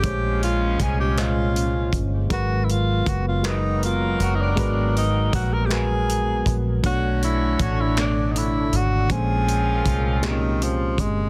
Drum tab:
HH |xxxxxx|xxxxxx|xxxxxx|xxxxxx|
CP |---x--|---x--|---x--|---x--|
BD |o-o--o|o-o---|o-o--o|o-o---|

HH |xxxxxx|
CP |---x--|
BD |o-o--o|